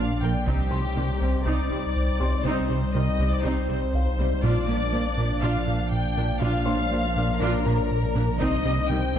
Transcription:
Already playing: A#1 F3 A#3 D4 D5 F5 C6
0.22 A#1 A#2 A#4 G5
0.46 C2 C3 G3 C4 D#4 G4 C5, taiko
0.71 C3 G3 C4 C6
0.97 C3 D#3 G3
1.21 C2 C3 G3 C4
1.45 C2 C3 C4 D#4 D5
1.71 C2 C3 G3 C4
1.96 C2
2.20 C2 C3 G3 C4 C6
2.44 C2 C3 C4 D#4 C5
2.70 C3 G3 C4
2.94 C3 D#3 G3 D#5
3.19 C2 C3 G3 C4
3.33 D5
3.44 C2 C3 C4 D#4 C5
3.69 C2 C3 G3 C4
3.93 C2 C5 F5
4.18 C2 C3 G3 C4
4.43 A#1 A#2 F3 A#3 D4 F4 D5, taiko
4.67 A#2 A#3 D4
4.93 A#2 F3 A#3
5.17 A#2 A#3 D4
5.42 A#2 D4 F4 F5
5.67 A#2 A#3 D4
5.92 A#2 G5
6.17 A#2 A#3 D4
6.41 A#1 A#2 D4 F4 F5
6.65 A#2 A#3 D4 C5 C6
6.91 A#2 F3 A#3
7.16 A#2 A#3 D4
7.41 A#2 D4 F4 A#4
7.66 A#2 A#3 D4 A#5
7.91 A#2
8.15 A#2 A#3 D4
8.40 C2 C3 G3 C4 D#4 C5 D#5, taiko
8.65 C3 G3 C4
8.89 C3 D#3 G3 G5
9.14 C2 C3 G3 C4, taiko

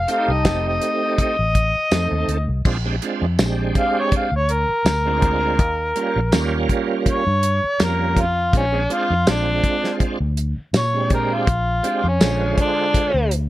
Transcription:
0.08 A3 C4 D#4 G4 A4 F5, closed hi-hat
0.28 C2 D#5
0.45 A3 C4 D#4 G4, kick, snare, closed hi-hat, tambourine
0.68 D#5
0.82 closed hi-hat
1.18 D#5, muted fingered electric bass stroke, kick, closed hi-hat
1.39 A1
1.55 kick, closed hi-hat
1.75 muted fingered electric bass stroke
1.91 F2 A3 C4 D#4 A4, snare, closed hi-hat, tambourine
2.12 D#2
2.28 D2, closed hi-hat
2.48 C2
2.65 A#1 G#3 C4 D4 F4, kick, crash
2.85 G#3 C4 D4 G4
3.02 G#3 C4 D4 F4, closed hi-hat
3.22 F2
3.39 A#1 G#3 C4 D4 G4, snare, closed hi-hat, tambourine
3.75 F5, kick, closed hi-hat
3.99 C#5
4.12 muted fingered electric bass stroke, kick, closed hi-hat
4.16 F5
4.32 D2
4.36 C#5
4.49 A#4, closed hi-hat
4.69 muted fingered electric bass stroke
4.85 D2, snare, closed hi-hat, tambourine
5.05 G#3 C4 D4 F4
5.22 kick, closed hi-hat
5.59 D#2, kick, closed hi-hat
5.96 G3 A#3 C#4 F4, closed hi-hat
6.16 A#1
6.32 D#2 G3 A#3 C#4 F4, snare, closed hi-hat, tambourine
6.69 kick, closed hi-hat
7.06 C#5, muted fingered electric bass stroke, kick, closed hi-hat
7.27 G2
7.43 closed hi-hat
7.64 muted fingered electric bass stroke
7.79 F2 G3 A#3 C#4 F4, snare, closed hi-hat, tambourine
7.83 A#4
8.16 kick, closed hi-hat
8.21 F4
8.53 A#1 G#3 C4 C#4 D4 F4, kick, closed hi-hat
8.72 G#3 C4 D4 G#4
8.89 G#3 C4 D4 F4, closed hi-hat
9.10 F2
9.26 A#1 G#3 C4 D4 F4, snare, closed hi-hat, tambourine
9.64 kick, closed hi-hat
9.84 snare
10.00 muted fingered electric bass stroke, kick, closed hi-hat
10.20 D2
10.37 closed hi-hat
10.57 muted fingered electric bass stroke
10.73 A#2, snare, closed hi-hat, tambourine
10.78 C#5
10.93 G#3 C4 D4 G4
11.10 kick, closed hi-hat
11.14 A#4
11.34 F4
11.47 A#1, kick, closed hi-hat
11.83 G#3 C4 D4 G4, closed hi-hat
12.04 F2
12.08 C#4
12.20 A#1 D3 G#3 F4 C5, snare, closed hi-hat, tambourine
12.58 D4, kick, closed hi-hat
12.94 muted fingered electric bass stroke, kick, closed hi-hat
13.14 D2
13.31 closed hi-hat

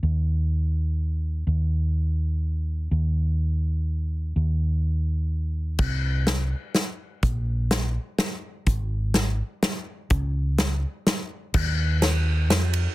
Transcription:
0.03 D#2
1.47 D#2
2.91 D#2
4.36 D#2
5.79 C2, kick, crash
6.27 snare, closed hi-hat
6.75 snare, closed hi-hat
7.23 A#1, kick, closed hi-hat
7.71 snare, closed hi-hat
8.18 snare, closed hi-hat
8.67 G#1, kick, closed hi-hat
9.14 snare, closed hi-hat
9.63 snare, closed hi-hat
10.10 C#2, kick, closed hi-hat
10.58 snare, closed hi-hat
11.07 snare, closed hi-hat
11.54 D#2, kick, crash
12.02 snare, ride
12.50 F2, snare, ride
12.73 ride

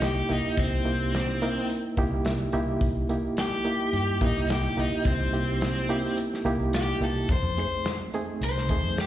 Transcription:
Already playing: C2 A#3 D#4 E4 G4
0.01 G4, snare, closed hi-hat
0.29 C2 A#3 D#4 E4 G4, closed hi-hat
0.45 muted fingered electric bass stroke
0.57 C2 C4, kick, closed hi-hat
0.72 C2
0.85 A#3 D#4 E4 G4, closed hi-hat
1.14 snare, closed hi-hat
1.42 A#3 D#4 E4 A#4, closed hi-hat
1.70 closed hi-hat
1.97 C2 A#3 D#4 E4 G4 G5, kick, closed hi-hat
2.12 C2
2.25 E5, snare, closed hi-hat
2.52 C2 A#3 D#4 E4 G4 E5, closed hi-hat
2.81 C2, kick, closed hi-hat
2.95 C2
3.09 A#3 D#4 E4 G4, closed hi-hat
3.37 G4, snare, closed hi-hat
3.65 A#3 D#4 E4 G4, closed hi-hat
3.93 G2, closed hi-hat
4.21 A#1 A#3 D#4 E4 G4, kick, closed hi-hat
4.35 C2
4.49 G4, snare, closed hi-hat
4.77 C2 A#3 D#4 E4 G4, closed hi-hat
4.92 muted fingered electric bass stroke
5.05 C2 C4, kick, closed hi-hat
5.20 C2
5.33 A#3 D#4 E4 G4, closed hi-hat
5.61 snare, closed hi-hat
5.89 A#3 D#4 E4 G4, closed hi-hat
6.17 closed hi-hat
6.34 snare
6.45 C2 A#3 D#4 E4 G4, closed hi-hat
6.59 C2
6.73 G4, snare, closed hi-hat
7.00 C2 A#3 D#4 E4 G4 A4, open hi-hat
7.29 F2 C5, kick, closed hi-hat
7.43 F2
7.57 A3 C4 D#4 G#4 C5, closed hi-hat
7.85 snare, closed hi-hat
8.13 A3 C4 D#4 G#4, closed hi-hat
8.41 C2 C5, closed hi-hat
8.58 snare
8.69 D#2 A3 C4 D#4 G#4, kick, closed hi-hat
8.83 F2
8.97 G4, snare, closed hi-hat

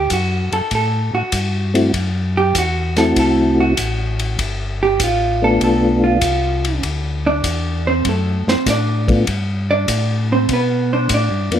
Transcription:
Already playing: G4
0.10 F#2 F#4, kick, hi-hat pedal, ride
0.52 F#2 A4, ride
0.71 A2, kick, ride
0.75 A4
1.13 A2 F#4
1.32 G2, kick, hi-hat pedal, ride
1.74 A3 C4 E4 F#4, ride
1.93 F#2, kick, ride
2.37 G4
2.55 E2 F#4, kick, hi-hat pedal, ride
2.96 A3 C4 E4 F#4 A4, snare, ride
3.16 C2 A4, kick, ride
3.60 F#4
3.77 A1, kick, hi-hat pedal, ride
4.19 ride
4.39 G1, kick, ride
4.83 G4
5.00 A1, kick, hi-hat pedal, ride
5.04 F4
5.42 A3 B3 D4 F4 A4
5.60 B1 A4, kick, ride
6.04 F4
6.21 C2, kick, hi-hat pedal, ride
6.65 ride
6.83 D2, kick, ride
7.26 D4 D5
7.43 E2, kick, hi-hat pedal, ride
7.87 C4 C5
8.04 F#2, kick, ride
8.09 A3 A4
8.47 F#2 C4 C5, snare
8.66 A2 D5, kick, snare, hi-hat pedal, ride
8.71 D4
9.08 A3 B3 D4 F4, kick, ride
9.27 G2, kick, ride
9.71 D4 D5
9.88 A2, kick, hi-hat pedal, ride
10.32 C4 C5
10.49 B2, kick, ride
10.53 B3 B4
10.93 D4 C5
11.09 A2, kick, hi-hat pedal, ride
11.14 D4 D5
11.30 G2
11.50 F2 A#3 B3 D4 F4, ride

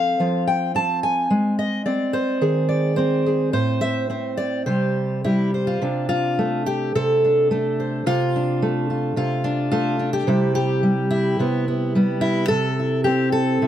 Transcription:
Already playing: F3 C4 A4 F5
0.20 F3 F4
0.47 G5
0.75 C4 A5
1.03 G#5
1.30 G#3
1.59 D#5
1.86 C4 D5
2.13 C5
2.41 D#3 G#4
2.69 D5
2.96 C4 C5
3.26 G#4
3.53 A2 C5
3.81 E5
4.10 C4 C5
4.37 D5
4.66 C3 G3 G4 C5
5.24 G3 E4 G4
5.54 C5
5.67 F4
5.82 C3 D4
6.09 F4
6.39 A3
6.66 G4
6.95 C3 A4
7.25 D4
7.51 A3 D4
7.80 C5
8.06 C3 F4
8.36 D4
8.62 A3
8.90 F4
9.16 C3 F4
9.44 D4
9.71 A3 F4
9.99 D4
10.13 G4
10.27 C3 G3 E4
10.55 G4
10.83 G3
11.11 E4
11.39 C3 B3
11.68 B3
11.95 G3 B3
12.21 E4
12.48 C3 A4
12.79 E4
13.04 C4 G4
13.32 A4
13.62 C3 E4

